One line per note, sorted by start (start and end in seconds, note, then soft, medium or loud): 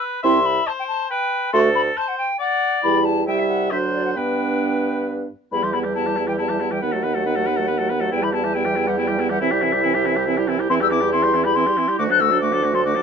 0.00 0.22 B4 loud
0.23 0.60 C2 loud
0.23 0.39 C4 medium
0.23 0.39 E4 medium
0.23 0.69 E5 loud
0.23 0.47 C6 loud
0.45 0.66 B5 loud
0.67 1.10 C5 loud
0.67 0.72 A5 loud
0.79 0.84 G5 loud
0.88 1.09 A5 loud
1.10 1.52 B4 loud
1.10 1.52 G5 loud
1.53 1.90 D2 loud
1.53 1.69 A3 loud
1.53 1.69 F#4 loud
1.53 1.99 A4 loud
1.53 1.59 C6 loud
1.75 1.81 B5 loud
1.97 2.27 C5 loud
1.97 2.09 A5 loud
2.08 2.17 F#5 loud
2.18 2.39 G5 loud
2.39 2.98 D5 loud
2.39 2.82 F#5 loud
2.83 3.29 E2 loud
2.83 3.25 G3 medium
2.83 3.25 E4 medium
2.83 3.06 B5 loud
3.05 3.26 A5 loud
3.27 3.73 C2 medium
3.27 3.73 G3 medium
3.27 3.71 E4 medium
3.27 3.72 E5 loud
3.27 3.40 G5 loud
3.39 3.47 E5 loud
3.48 3.70 F#5 loud
3.71 4.18 D2 medium
3.71 4.18 F#3 medium
3.71 4.15 D4 medium
3.71 4.18 C5 loud
3.71 3.77 E5 loud
3.93 4.05 D5 loud
4.05 4.10 F#5 loud
4.15 5.30 G2 medium
4.15 5.30 B3 medium
4.15 5.27 D4 medium
4.15 5.30 B4 medium
4.15 5.05 G5 loud
5.52 6.78 E2 medium
5.52 5.65 G3 medium
5.52 5.64 B3 medium
5.52 5.64 E4 medium
5.52 5.65 B5 loud
5.63 5.76 E3 medium
5.63 5.75 G3 medium
5.63 5.75 G4 medium
5.63 5.72 C6 loud
5.73 5.87 G3 medium
5.73 5.87 B3 medium
5.73 5.85 E4 medium
5.73 5.79 B5 loud
5.83 5.95 E3 medium
5.83 5.95 G3 medium
5.83 5.94 G4 medium
5.94 6.08 G3 medium
5.94 6.08 B3 medium
5.94 6.07 E4 medium
5.94 6.27 A5 loud
6.06 6.19 E3 medium
6.06 6.19 G3 medium
6.06 6.17 G4 medium
6.16 6.29 G3 medium
6.16 6.30 B3 medium
6.16 6.28 E4 medium
6.27 6.38 E3 medium
6.27 6.39 G3 medium
6.27 6.37 G4 medium
6.27 6.33 G5 loud
6.38 6.51 G3 medium
6.38 6.52 B3 medium
6.38 6.50 E4 medium
6.38 6.73 A5 loud
6.49 6.62 E3 medium
6.49 6.62 G3 medium
6.49 6.61 G4 medium
6.60 6.73 G3 medium
6.60 6.73 B3 medium
6.60 6.72 E4 medium
6.71 6.82 E3 medium
6.71 6.82 G3 medium
6.71 6.81 G4 medium
6.71 6.83 G5 loud
6.81 8.10 D#2 loud
6.81 6.95 D#3 medium
6.81 6.95 B3 medium
6.81 6.94 B4 medium
6.81 8.13 F#5 loud
6.92 7.06 F#3 medium
6.92 7.06 A3 medium
6.92 7.05 A4 medium
7.03 7.17 D#3 medium
7.03 7.17 B3 medium
7.03 7.16 B4 medium
7.14 7.25 F#3 medium
7.14 7.25 A3 medium
7.14 7.25 A4 medium
7.26 7.38 D#3 medium
7.26 7.38 B3 medium
7.26 7.37 B4 medium
7.35 7.49 F#3 medium
7.35 7.49 A3 medium
7.35 7.48 A4 medium
7.46 7.60 D#3 medium
7.46 7.59 B3 medium
7.46 7.58 B4 medium
7.57 7.68 F#3 medium
7.57 7.69 A3 medium
7.57 7.67 A4 medium
7.67 7.82 D#3 medium
7.67 7.81 B3 medium
7.67 7.79 B4 medium
7.78 7.93 F#3 medium
7.78 7.92 A3 medium
7.78 7.91 A4 medium
7.90 8.04 D#3 medium
7.90 8.03 B3 medium
7.90 8.02 B4 medium
8.00 8.12 F#3 medium
8.00 8.11 A3 medium
8.00 8.11 A4 medium
8.11 9.38 E2 loud
8.11 8.24 G3 medium
8.11 8.24 B3 medium
8.11 8.24 E4 medium
8.11 8.25 G5 loud
8.22 8.35 E3 medium
8.22 8.34 G3 medium
8.22 8.35 G4 medium
8.22 8.32 B5 loud
8.32 8.45 G3 medium
8.32 8.46 B3 medium
8.32 8.45 E4 medium
8.32 8.55 A5 loud
8.44 8.54 E3 medium
8.44 8.55 G3 medium
8.44 8.54 G4 medium
8.54 8.67 G3 medium
8.54 8.68 B3 medium
8.54 8.66 E4 medium
8.54 8.89 G5 loud
8.65 8.78 E3 medium
8.65 8.78 G3 medium
8.65 8.77 G4 medium
8.75 8.89 G3 medium
8.75 8.89 B3 medium
8.75 8.88 E4 medium
8.87 8.97 E3 medium
8.87 8.97 G3 medium
8.87 8.97 G4 medium
8.87 8.99 F#5 loud
8.98 9.10 G3 medium
8.98 9.10 B3 medium
8.98 9.09 E4 medium
8.98 9.30 G5 loud
9.07 9.21 E3 medium
9.07 9.21 G3 medium
9.07 9.20 G4 medium
9.19 9.32 G3 medium
9.19 9.32 B3 medium
9.19 9.31 E4 medium
9.29 9.40 E3 medium
9.29 9.41 G3 medium
9.29 9.40 G4 medium
9.29 9.40 F#5 loud
9.41 10.67 C2 loud
9.41 9.54 E3 medium
9.41 9.54 C4 loud
9.41 9.52 E4 medium
9.41 10.43 E5 loud
9.51 9.64 G3 medium
9.51 9.64 E4 medium
9.51 9.63 G4 medium
9.61 9.75 E3 medium
9.61 9.75 C4 medium
9.61 9.74 E4 medium
9.72 9.84 G3 medium
9.72 9.84 E4 medium
9.72 9.82 G4 medium
9.83 9.97 E3 medium
9.83 9.97 C4 medium
9.83 9.96 E4 medium
9.94 10.08 G3 medium
9.94 10.08 E4 medium
9.94 10.07 G4 medium
10.05 10.19 E3 medium
10.05 10.18 C4 medium
10.05 10.17 E4 medium
10.16 10.27 G3 medium
10.16 10.27 E4 medium
10.16 10.26 G4 medium
10.27 10.40 E3 medium
10.27 10.39 C4 medium
10.27 10.38 E4 medium
10.37 10.51 G3 medium
10.37 10.50 E4 medium
10.37 10.49 G4 medium
10.48 10.61 E3 medium
10.48 10.60 C4 loud
10.48 10.61 E4 medium
10.59 10.70 G3 medium
10.59 10.69 E4 medium
10.59 10.69 G4 medium
10.70 11.69 E2 loud
10.70 10.82 E3 loud
10.70 10.82 C4 loud
10.70 10.82 E4 medium
10.70 10.74 C6 loud
10.80 10.93 G3 medium
10.80 10.93 E4 medium
10.80 10.92 G4 medium
10.80 10.90 E6 loud
10.90 11.04 E3 medium
10.90 11.03 C4 medium
10.90 11.02 E4 medium
10.90 11.12 D6 loud
11.01 11.12 G3 medium
11.01 11.13 E4 medium
11.01 11.11 G4 medium
11.12 11.25 E3 medium
11.12 11.25 C4 medium
11.12 11.24 E4 medium
11.12 11.44 C6 loud
11.23 11.36 G3 medium
11.23 11.35 E4 medium
11.23 11.35 G4 medium
11.34 11.47 E3 medium
11.34 11.46 C4 medium
11.34 11.45 E4 medium
11.44 11.55 G3 medium
11.44 11.56 E4 medium
11.44 11.55 G4 medium
11.44 11.57 B5 loud
11.55 11.68 E3 medium
11.55 11.68 C4 medium
11.55 11.68 E4 medium
11.55 11.98 C6 loud
11.66 11.79 G3 medium
11.66 11.79 E4 medium
11.66 11.79 G4 medium
11.77 11.90 E3 medium
11.77 11.90 C4 medium
11.77 11.89 E4 medium
11.88 11.98 G3 medium
11.88 11.98 E4 medium
11.88 11.98 G4 medium
11.98 13.03 D2 loud
11.98 12.11 D3 loud
11.98 12.11 A3 loud
11.98 12.12 F#4 medium
11.98 12.03 D6 loud
12.10 12.22 F#3 medium
12.10 12.22 D4 medium
12.10 12.22 A4 medium
12.10 12.21 F#6 loud
12.20 12.32 D3 medium
12.20 12.33 A3 medium
12.20 12.33 F#4 medium
12.20 12.40 E6 loud
12.31 12.41 F#3 medium
12.31 12.42 D4 medium
12.31 12.42 A4 medium
12.41 12.53 D3 medium
12.41 12.55 A3 medium
12.41 12.55 F#4 medium
12.41 12.76 D6 loud
12.52 12.64 F#3 medium
12.52 12.66 D4 medium
12.52 12.65 A4 medium
12.63 12.75 D3 medium
12.63 12.77 A3 medium
12.63 12.76 F#4 medium
12.73 12.84 F#3 medium
12.73 12.86 D4 medium
12.73 12.85 A4 medium
12.73 12.84 C6 loud
12.84 12.96 D3 medium
12.84 12.98 A3 medium
12.84 12.97 F#4 medium
12.84 13.03 D6 loud
12.95 13.03 F#3 medium
12.95 13.03 D4 medium
12.95 13.03 A4 medium